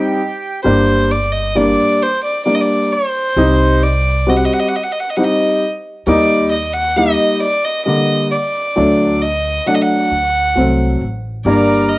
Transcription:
Already playing: G3 C4 D#4 G4
0.64 G1 G3 A#3 D4 C5
1.11 D5
1.32 D#5
1.55 G3 A#3 D4 D5
2.02 C5
2.24 D5
2.45 G3 A#3 D4 D5
2.55 D#5
2.60 D5
2.92 C5
3.36 C2 G3 C4 D#4
3.83 D5
4.27 G3 C4 F#4 D#5
4.36 F#5
4.44 D#5
4.53 F#5
4.59 D#5
4.68 F#5
4.76 D#5
4.83 F#5
4.92 D#5
5.00 F#5
5.10 D#5
5.16 G3 C4 D#4 F#5
5.24 D#5
6.07 D#2 G3 A#3 D#4 D5
6.52 D#5
6.73 F#5
6.96 G3 A#3 D#4 D#5
7.42 D5
7.65 D#5
7.86 D3 G3 A#3 D#5
8.31 D5
8.76 D2 F#3 A3 D4
9.22 D#5
9.66 F#3 A3 D4 F#5
9.74 D#5
9.81 F#5
10.11 D2
10.55 C2 F#3 A3 C4
11.01 A1
11.45 G1 G3 A#3 D4 A#4 D5
11.89 D#5

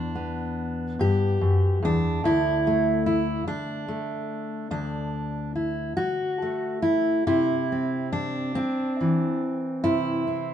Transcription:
Already playing: E2 D4
0.15 B3
0.99 G2 G4
1.41 F#2
1.82 E2 D4
2.24 D2 E4
2.67 A3
3.06 E4
3.48 D4, muted steel-string acoustic guitar stroke
3.88 A3
4.71 D2 D4
5.55 E4
5.97 F#4, muted steel-string acoustic guitar stroke
6.42 A3
6.82 E4
7.27 C3 E4
7.72 C4
8.13 D4
8.55 C4, muted steel-string acoustic guitar stroke
9.01 E3
9.84 C3 E4
10.27 C4

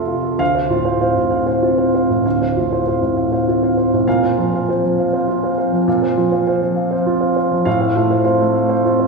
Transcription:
Already playing: F1 F2 A3 F4 A4 E5 F5
0.07 C3 F4
0.24 A4
0.39 D2 F5
0.55 C5 F5
0.70 A2 F4
0.85 C5 F5
1.01 C4 C5 F5
1.16 A2
1.31 F5
1.46 C5 F5
1.62 C4 F4
1.78 C5 F5
1.94 C5 F5
2.09 A2
2.26 D2 F5
2.41 C5 F5
2.57 A2 F4
2.73 C5 F5
2.87 C4 C5 F5
3.01 A2
3.17 F5
3.32 C5 F5
3.48 C4 F4
3.63 C5 F5
3.77 C5 F5
3.93 A2
4.08 A#2 F5
4.23 C5 F5
4.38 F3 F4
4.54 C5 F5
4.69 C4 C5 F5
4.84 F3
4.99 F5
5.13 C5 F5
5.28 C4 F4
5.44 C5 F5
5.58 C5 F5
5.72 F3
5.88 A#2 F5
6.02 C5 F5
6.16 F3 F4
6.32 C5 F5
6.47 C4 C5 F5
6.62 F3
6.76 F5
6.91 C5 F5
7.06 C4 F4
7.21 C5 F5
7.36 C5 F5
7.51 F3
7.65 A2 F5
7.81 C5 F5
7.96 A3 F4
8.11 C5 F5
8.24 C4 C5 F5
8.41 A3
8.55 F5
8.69 C5 F5
8.85 C4 F4
8.99 C5 F5

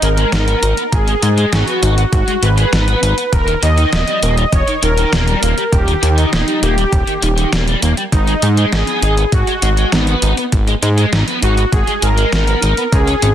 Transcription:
0.02 G#1 G#3 A#4, closed hi-hat
0.17 G#3, closed hi-hat
0.32 G#1 D#4, snare, closed hi-hat
0.47 B3, closed hi-hat
0.62 G#1 D#4, closed hi-hat
0.77 B3, closed hi-hat
0.92 G#1 G#4, kick, closed hi-hat
1.07 G#3, closed hi-hat
1.22 G#2 G#3, closed hi-hat
1.37 G#3, closed hi-hat
1.52 G#1 D#4 F#4, snare, closed hi-hat
1.67 B3, closed hi-hat
1.82 G#1 D#4, closed hi-hat
1.97 B3, closed hi-hat
2.12 G#1 F#4, kick, closed hi-hat
2.27 G#3, closed hi-hat
2.42 G#1 G#3 B4, closed hi-hat
2.57 G#3, closed hi-hat
2.72 G#1 D#4, snare, closed hi-hat
2.87 B3, closed hi-hat
3.02 G#1 D#4, closed hi-hat
3.17 B3, closed hi-hat
3.33 D#1 A#4, kick, closed hi-hat
3.47 D#3, closed hi-hat
3.62 D#2 D#3 D#5, closed hi-hat
3.77 D#3, closed hi-hat
3.92 D#1 A#3, snare, closed hi-hat
4.07 G3, closed hi-hat
4.22 D#1 A#3, closed hi-hat
4.37 G3, closed hi-hat
4.52 D#1 C#5, kick, closed hi-hat
4.67 D#3, closed hi-hat
4.82 D#1 D#3 A#4, closed hi-hat
4.97 D#3, closed hi-hat
5.12 D#1 A#3, snare, closed hi-hat
5.28 G3, closed hi-hat
5.43 D#1 A#3, closed hi-hat
5.58 G3, closed hi-hat
5.72 D#1 G4, kick, closed hi-hat
5.87 D#3, closed hi-hat
6.03 D#2 D#3, closed hi-hat
6.17 D#3 D#4, closed hi-hat
6.32 D#1 A#3 D#4, snare, closed hi-hat
6.47 G3, closed hi-hat
6.62 D#1 A#3 G4, closed hi-hat
6.77 G3, closed hi-hat
6.92 D#1, kick, closed hi-hat
7.07 D#3, closed hi-hat
7.22 D#1 D#3, closed hi-hat
7.37 D#3, closed hi-hat
7.52 D#1 A#3, snare, closed hi-hat
7.67 G3, closed hi-hat
7.82 D#1 A#3, closed hi-hat
7.97 G3, closed hi-hat
8.12 G#1 D#4, kick, closed hi-hat
8.27 G#3, closed hi-hat
8.42 G#2 G#3, closed hi-hat
8.57 G#3, closed hi-hat
8.72 G#1 D#4 G#4, snare, closed hi-hat
8.87 B3, closed hi-hat
9.02 G#1 D#4, closed hi-hat
9.18 B3, closed hi-hat
9.32 G#1 F#4, kick, closed hi-hat
9.47 G#3, closed hi-hat
9.62 G#1 G#3, closed hi-hat
9.77 G#3, closed hi-hat
9.92 G#1 B3 D#4, snare, closed hi-hat
10.07 B3, closed hi-hat
10.22 G#1 D#4, closed hi-hat
10.37 B3, closed hi-hat
10.52 G#1, kick, closed hi-hat
10.67 G#3, closed hi-hat
10.82 G#2 G#3, closed hi-hat
10.98 G#3, closed hi-hat
11.12 G#1 D#4, snare, closed hi-hat
11.28 B3, closed hi-hat
11.42 G#1 D#4 F#4, closed hi-hat
11.57 B3, closed hi-hat
11.72 G#1 G#4, kick, closed hi-hat
11.87 G#3, closed hi-hat
12.02 G#1 G#3 A#4, closed hi-hat
12.17 G#3, closed hi-hat
12.32 G#1 D#4, snare, closed hi-hat
12.47 B3, closed hi-hat
12.62 G#1 D#4, closed hi-hat
12.77 B3, closed hi-hat
12.92 C#2 G#4, kick, closed hi-hat
13.07 C#4, closed hi-hat
13.22 G#1 C#4, closed hi-hat

